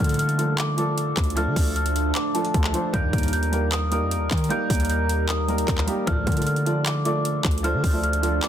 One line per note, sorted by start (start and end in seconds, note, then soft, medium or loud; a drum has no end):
0.00 0.17 D2 loud
0.00 0.17 A2 loud
0.00 1.13 D3 loud
0.00 0.17 F3 loud
0.00 0.24 F3 loud
0.00 2.90 F3 medium
0.00 0.24 A3 loud
0.00 2.91 A3 medium
0.00 0.24 D4 medium
0.00 2.91 D4 medium
0.00 0.25 A4 loud
0.00 2.91 A4 medium
0.00 0.17 F6 loud
0.04 closed hi-hat medium
0.09 closed hi-hat medium
0.14 closed hi-hat medium
0.19 0.56 F6 medium
0.19 closed hi-hat medium
0.29 closed hi-hat soft
0.37 0.68 F3 medium
0.37 0.68 A3 medium
0.37 0.68 D4 medium
0.37 0.69 A4 medium
0.37 closed hi-hat medium
0.58 0.76 D6 medium
0.58 clap loud
0.58 closed hi-hat medium
0.77 1.22 F3 medium
0.77 1.22 A3 medium
0.77 1.22 D4 medium
0.77 1.23 A4 medium
0.77 1.33 D6 medium
0.77 closed hi-hat medium
0.98 closed hi-hat medium
1.17 1.48 D2 loud
1.17 kick medium
1.17 clap medium
1.17 closed hi-hat medium
1.24 closed hi-hat medium
1.30 closed hi-hat medium
1.36 1.95 F3 loud
1.36 1.96 A3 medium
1.36 1.96 D4 loud
1.36 1.96 A4 loud
1.36 1.74 F6 loud
1.36 closed hi-hat medium
1.47 1.56 D3 loud
1.56 2.13 D2 loud
1.56 kick loud
1.56 open hi-hat medium
1.76 2.13 F6 medium
1.76 closed hi-hat medium
1.86 closed hi-hat medium
1.96 closed hi-hat medium
2.15 2.32 D6 loud
2.15 clap loud
2.15 closed hi-hat medium
2.34 2.64 F3 medium
2.34 2.64 A3 medium
2.34 2.65 D4 medium
2.34 2.65 A4 medium
2.34 2.90 A5 medium
2.34 closed hi-hat medium
2.45 closed hi-hat soft
2.54 2.73 D2 loud
2.54 kick medium
2.54 closed hi-hat medium
2.64 clap medium
2.73 2.88 F3 medium
2.73 2.88 A3 medium
2.73 2.89 D4 medium
2.73 2.89 C5 medium
2.73 closed hi-hat medium
2.93 3.31 A#1 loud
2.93 3.12 D#2 loud
2.93 3.31 G2 loud
2.93 3.31 D#3 loud
2.93 3.38 G3 loud
2.93 6.04 G3 medium
2.93 6.04 A#3 medium
2.93 3.38 A#3 medium
2.93 6.04 D#4 medium
2.93 3.38 D#4 medium
2.93 6.04 A#4 medium
2.93 3.39 A#4 loud
2.93 3.31 G6 loud
2.93 kick loud
2.93 closed hi-hat medium
3.13 4.03 D#2 loud
3.13 kick loud
3.13 closed hi-hat medium
3.18 closed hi-hat medium
3.23 closed hi-hat medium
3.28 closed hi-hat medium
3.33 3.70 G6 medium
3.33 closed hi-hat medium
3.43 closed hi-hat soft
3.52 3.82 G3 medium
3.52 3.82 A#3 medium
3.52 3.82 D#4 medium
3.52 3.83 A#4 medium
3.52 closed hi-hat medium
3.72 3.89 D#6 medium
3.72 clap loud
3.72 closed hi-hat medium
3.91 4.36 G3 medium
3.91 4.36 A#3 medium
3.91 4.36 D#4 medium
3.91 4.37 A#4 medium
3.91 4.47 D#6 medium
3.91 closed hi-hat medium
4.01 4.18 F2 loud
4.11 closed hi-hat medium
4.16 4.30 D#2 loud
4.31 4.50 D#3 loud
4.31 kick medium
4.31 clap loud
4.31 closed hi-hat medium
4.37 closed hi-hat medium
4.44 closed hi-hat medium
4.49 5.09 G3 loud
4.49 5.09 A#3 loud
4.49 5.10 D#4 medium
4.49 5.10 A#4 loud
4.49 4.87 G6 loud
4.49 closed hi-hat medium
4.70 5.64 D#2 loud
4.70 kick loud
4.70 closed hi-hat soft
4.70 open hi-hat medium
4.75 closed hi-hat medium
4.80 closed hi-hat medium
4.85 closed hi-hat medium
4.90 5.27 G6 medium
4.90 closed hi-hat medium
5.09 closed hi-hat medium
5.29 5.46 D#6 medium
5.29 clap loud
5.29 closed hi-hat medium
5.48 5.78 G3 medium
5.48 5.78 A#3 medium
5.48 5.78 D#4 medium
5.48 5.79 A#4 medium
5.48 6.04 A#5 medium
5.48 closed hi-hat soft
5.58 closed hi-hat medium
5.68 5.87 D#2 loud
5.68 kick medium
5.68 clap medium
5.68 closed hi-hat medium
5.78 clap medium
5.86 6.02 G3 medium
5.86 6.02 A#3 medium
5.86 6.03 D#4 medium
5.86 6.03 G4 medium
5.86 closed hi-hat medium
6.07 6.26 D2 loud
6.07 6.45 D2 loud
6.07 6.45 A2 loud
6.07 6.29 F3 loud
6.07 6.45 F3 loud
6.07 8.48 F3 medium
6.07 6.29 A3 medium
6.07 8.48 A3 medium
6.07 8.48 D4 medium
6.07 6.30 D4 medium
6.07 8.48 A4 medium
6.07 6.30 A4 medium
6.07 6.30 D5 loud
6.07 6.44 F6 loud
6.07 kick loud
6.07 closed hi-hat medium
6.27 7.41 D3 loud
6.27 kick loud
6.27 closed hi-hat medium
6.32 closed hi-hat medium
6.36 6.59 F3 medium
6.36 6.59 A3 medium
6.36 6.59 D4 medium
6.36 6.60 A4 medium
6.36 6.60 D5 medium
6.36 closed hi-hat medium
6.42 closed hi-hat medium
6.47 6.83 F6 medium
6.47 closed hi-hat medium
6.56 closed hi-hat soft
6.65 6.95 F3 medium
6.65 6.96 A3 medium
6.65 6.96 D4 medium
6.65 6.96 A4 medium
6.65 6.96 D5 medium
6.65 closed hi-hat medium
6.86 7.03 D6 medium
6.86 clap loud
6.86 closed hi-hat medium
7.05 7.50 F3 medium
7.05 7.50 A3 medium
7.05 7.50 D4 medium
7.05 7.50 A4 medium
7.05 7.50 D5 medium
7.05 7.61 D6 medium
7.05 closed hi-hat medium
7.25 closed hi-hat medium
7.45 7.75 D2 loud
7.45 kick loud
7.45 clap loud
7.45 closed hi-hat medium
7.51 closed hi-hat medium
7.58 closed hi-hat medium
7.63 7.86 F3 medium
7.63 7.86 A3 medium
7.63 7.86 D4 medium
7.63 7.87 A4 loud
7.63 7.87 C5 loud
7.63 8.01 F6 loud
7.63 closed hi-hat medium
7.74 7.83 D3 loud
7.84 8.40 D2 loud
7.84 kick loud
7.84 open hi-hat medium
7.93 8.15 F3 medium
7.93 8.16 A3 medium
7.93 8.16 D4 medium
7.93 8.16 A4 medium
7.93 8.16 D5 medium
8.04 8.40 F6 medium
8.04 closed hi-hat medium
8.13 closed hi-hat medium
8.22 8.48 F3 medium
8.22 8.48 A3 medium
8.22 8.48 D4 medium
8.22 8.48 A4 medium
8.22 8.48 D5 medium
8.22 closed hi-hat medium
8.43 8.48 D6 medium
8.43 clap loud
8.43 closed hi-hat medium